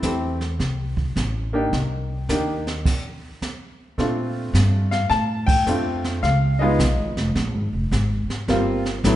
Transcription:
0.03 E2 A3 C4 E4 G4, kick, snare, hi-hat pedal
0.41 snare
0.59 C2, brush sweep, kick, snare
0.97 kick
1.16 A1, kick, snare, hi-hat pedal
1.53 A#3 D4 D#4 G4
1.72 C2, brush sweep, kick, snare
2.29 D#2 A#3 D4 D#4 G4, kick, snare, hi-hat pedal
2.67 snare
2.85 brush sweep, kick, snare, crash
3.42 kick, snare, hi-hat pedal
3.98 A#2 A3 C4 D4 F4, brush sweep, kick, snare
4.54 G2, kick, snare, hi-hat pedal
4.91 F5, snare
5.10 A2 A5, brush sweep, kick, snare
5.46 G5, kick, crash
5.66 F2 A3 C4 D4 F4, hi-hat pedal
6.04 snare
6.23 C#2 F5, brush sweep, kick, snare
6.59 G#3 B3 D#4 F4 D#5
6.79 B1, kick, snare, hi-hat pedal
6.97 G#1
7.17 F1, snare
7.35 A#1, brush sweep, kick, snare
7.54 G#1
7.73 F1
7.91 G#1, kick, snare, hi-hat pedal
8.28 muted upright bass stroke, snare
8.48 G1 G3 A#3 C4 F4, brush sweep, kick, snare
8.85 snare
9.04 A1 F#3 A3 B3 E4, kick, snare, hi-hat pedal

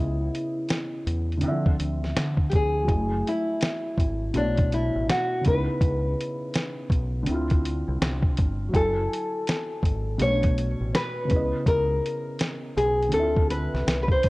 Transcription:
Already playing: C#2 C#3 B3 E4 D#5
0.35 closed hi-hat
0.69 snare, closed hi-hat
1.06 E2, closed hi-hat
1.32 closed hi-hat
1.37 D3 C4, closed hi-hat
1.43 D3 E4
1.48 F3 E5
1.66 kick
1.80 D2, closed hi-hat
2.04 snare
2.16 D3, snare, closed hi-hat
2.37 kick
2.50 D2 G4, kick, closed hi-hat
2.55 G#4
2.83 F#3 E4
2.88 F#1 G#4, kick, closed hi-hat
2.94 A3
3.27 E4, closed hi-hat
3.61 snare, closed hi-hat
3.98 G#1, kick, closed hi-hat
4.34 B1 B2 A3 D4 C#5, closed hi-hat
4.39 D4
4.58 kick, closed hi-hat
4.73 E4, closed hi-hat
4.96 A1
5.09 F#4, snare, closed hi-hat
5.41 C#3 B3, closed hi-hat
5.46 C#2 D#4 B4, kick
5.51 E4
5.81 C#2, kick, closed hi-hat
6.21 closed hi-hat
6.54 snare, closed hi-hat
6.90 B1, kick, closed hi-hat
7.23 D3 C4, closed hi-hat
7.28 D2 E4
7.34 F4
7.50 kick, closed hi-hat
7.65 closed hi-hat
7.88 C2
8.01 C2, snare, closed hi-hat
8.22 kick
8.37 G1, kick, closed hi-hat
8.69 F#3 E4
8.74 F#1 A4 G#5, kick, closed hi-hat
8.79 A4
9.13 closed hi-hat
9.47 snare, closed hi-hat
9.83 G#1, kick, closed hi-hat
10.18 B1 B2 A3 C#4 C#5, closed hi-hat
10.23 C#5
10.28 D4
10.43 kick, closed hi-hat
10.58 closed hi-hat
10.80 A1
10.95 B4, snare, closed hi-hat
11.25 C#3 B3
11.30 C#2 E4, kick, closed hi-hat
11.36 D#5
11.66 C#2 A#4, kick, closed hi-hat
12.06 closed hi-hat
12.39 snare, closed hi-hat
12.77 B1 G#4, closed hi-hat
13.03 closed hi-hat
13.09 D3 C4, closed hi-hat
13.14 D2 E4 A4
13.20 F4 E5
13.37 kick
13.51 B4, closed hi-hat
13.74 C2, snare
13.87 C2, snare, closed hi-hat
14.03 B4
14.08 C5, kick
14.23 G1, kick, closed hi-hat

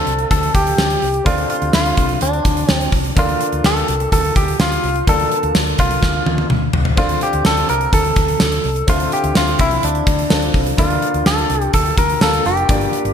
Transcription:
Already playing: D3 C4 D4 F4 A4 D5
0.07 C2, closed hi-hat
0.19 closed hi-hat
0.31 D2 A4, kick, closed hi-hat
0.43 closed hi-hat
0.55 D2 G4, kick, closed hi-hat
0.67 closed hi-hat
0.78 D2, snare, tambourine
0.90 closed hi-hat
1.02 C2, open hi-hat
1.14 closed hi-hat
1.24 D2 D3 C4 D4 F4 A4 D5, kick, closed hi-hat
1.38 closed hi-hat
1.50 F4, closed hi-hat
1.62 D2, closed hi-hat
1.73 D2 F4, snare, tambourine
1.85 closed hi-hat
1.97 C2, kick, closed hi-hat
2.09 closed hi-hat
2.21 D2 D4, closed hi-hat
2.33 closed hi-hat
2.45 D2, kick, closed hi-hat
2.57 closed hi-hat
2.69 D2 C4, snare, tambourine
2.81 closed hi-hat
2.92 C2, kick, open hi-hat
3.04 closed hi-hat
3.16 D2 D3 A#3 D4 F4 A4 D5, kick, closed hi-hat
3.29 closed hi-hat
3.41 closed hi-hat
3.52 D2, closed hi-hat
3.64 D2 A4, snare, tambourine
3.77 closed hi-hat
3.88 C2, closed hi-hat
4.00 closed hi-hat
4.12 D2 A4, kick, closed hi-hat
4.24 closed hi-hat
4.36 D2 G4, kick, closed hi-hat
4.48 closed hi-hat
4.60 D2 F4, snare, tambourine
4.72 closed hi-hat
4.84 C2, open hi-hat
4.96 closed hi-hat
5.07 D2 D3 A#3 D4 F4 A4 D5, kick, closed hi-hat
5.19 closed hi-hat
5.31 closed hi-hat
5.43 D2, closed hi-hat
5.55 D2, snare, tambourine
5.67 closed hi-hat
5.78 C2 F4, kick, closed hi-hat
5.91 closed hi-hat
6.03 D2, kick, snare
6.26 D2, high tom
6.38 high tom
6.50 D2, mid tom
6.73 C2, floor tom
6.85 floor tom
6.96 D2 D3 C4 D4 F4 A4 D5, kick, splash
7.09 closed hi-hat
7.21 G4, closed hi-hat
7.33 D2, closed hi-hat
7.45 D2 A4, snare, tambourine
7.57 closed hi-hat
7.69 C2 A#4, closed hi-hat
7.81 closed hi-hat
7.93 D2 A4, kick, closed hi-hat
8.04 closed hi-hat
8.16 D2, kick, closed hi-hat
8.28 closed hi-hat
8.40 D2, snare, tambourine
8.52 closed hi-hat
8.64 C2, open hi-hat
8.76 closed hi-hat
8.87 D2 D3 C4 D4 F4 A4 E5, kick, closed hi-hat
9.00 closed hi-hat
9.12 G4, closed hi-hat
9.24 D2, closed hi-hat
9.35 D2 F4, snare, tambourine
9.47 closed hi-hat
9.59 C2 E4, kick, closed hi-hat
9.71 closed hi-hat
9.83 D2 D4, closed hi-hat
9.95 closed hi-hat
10.07 D2, kick, closed hi-hat
10.19 closed hi-hat
10.30 D2 C4 D4 F4 A4 D5, snare, tambourine
10.42 closed hi-hat
10.54 C2, kick, open hi-hat
10.66 closed hi-hat
10.77 D2 D3 A#3 D4 F4 A4 D5, kick, closed hi-hat
10.90 closed hi-hat
11.02 closed hi-hat
11.14 D2, closed hi-hat
11.26 D2 A4, snare, tambourine
11.38 closed hi-hat
11.50 C2, closed hi-hat
11.61 closed hi-hat
11.73 D2 A4, kick, closed hi-hat
11.86 closed hi-hat
11.97 D2 A#4, kick, closed hi-hat
12.09 closed hi-hat
12.21 D2 A#3 D4 F4 A4 F5, snare, tambourine
12.33 closed hi-hat
12.45 F1 G4, open hi-hat
12.57 closed hi-hat
12.68 G1 G2 A#3 D4 F4 G4 D5, kick, closed hi-hat
12.81 closed hi-hat
12.93 closed hi-hat
13.05 G1, closed hi-hat

